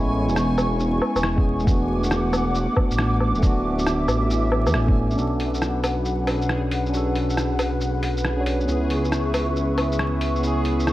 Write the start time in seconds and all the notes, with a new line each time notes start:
Already playing: A1 G#3 B3 C#4 E4 G#5 C#6
0.28 E1, shaker
0.36 cross-stick, shaker
0.58 low woodblock, shaker
0.80 shaker
1.02 low woodblock
1.16 E1, low woodblock, shaker
1.23 cross-stick
1.36 G#3 B3 C#4 G#4, kick
1.60 A3, shaker
1.66 E1 B3 D4 F#5 D6, kick, shaker
1.71 F#4
2.03 shaker
2.11 cross-stick, shaker
2.33 low woodblock, shaker
2.55 shaker
2.73 A3 B3, low woodblock
2.77 D4 F#4, kick
2.91 A1, shaker
2.98 cross-stick
3.20 low woodblock
3.35 D1 A3, shaker
3.41 B3 D4 E5, kick, shaker
3.46 F#4
3.79 shaker
3.87 cross-stick, shaker
4.08 A1, low woodblock, shaker
4.30 shaker
4.52 low woodblock
4.66 E2, low woodblock, shaker
4.74 A1, cross-stick
4.86 A3 B3 D4, kick
4.91 A4
5.11 C#4, shaker
5.17 B1 D4 F#4 G#4 B4 F#5, shaker
5.22 A4
5.40 open hi-hat
5.54 shaker
5.62 cross-stick, shaker
5.84 open hi-hat, low woodblock, shaker
6.05 shaker
6.24 C#4 D4, open hi-hat, low woodblock
6.29 F#4 A4
6.42 shaker
6.49 cross-stick
6.71 open hi-hat
6.86 C#4, shaker
6.92 D4 F#4, shaker
6.97 A4
7.15 open hi-hat
7.30 shaker
7.37 cross-stick, shaker
7.59 open hi-hat, low woodblock, shaker
7.81 shaker
8.03 open hi-hat
8.17 shaker
8.25 cross-stick
8.37 C#4 D4 F#4
8.41 C#5
8.46 open hi-hat
8.60 B3, shaker
8.67 C#2 C#4 E4 E5 C#6, shaker
8.72 G#4
8.90 open hi-hat
9.04 shaker
9.12 cross-stick, shaker
9.34 open hi-hat, low woodblock, shaker
9.56 shaker
9.74 B3 C#4
9.78 E4 G#4, open hi-hat, low woodblock
9.92 shaker
9.99 cross-stick
10.21 open hi-hat
10.36 B3, shaker
10.42 C#4 E4, shaker
10.47 G#4
10.65 open hi-hat
10.80 shaker
10.87 cross-stick, shaker